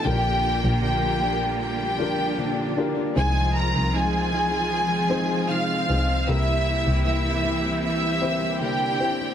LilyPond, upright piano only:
<<
  \new Staff \with { instrumentName = "Upright piano" } { \time 4/4 \key aes \lydian \tempo 4 = 77 <des' d' f' g' bes'>2 r8 <d' f' g' bes'>4 <d' f' g' bes'>8 | <c' ees' aes' c''>2 r8 <c' ees' aes' c''>4 <c' ees' aes' c''>8 | <c' e' g' bes'>2 r8 <c' e' g' c''>4 <c' e' g' c''>8 | }
  \new Staff \with { instrumentName = "Upright piano" } { \clef bass \time 4/4 \key aes \lydian <bes, f>4. r2 r8 | c4. r2 r8 | <c g>4. r2 r8 | }
>>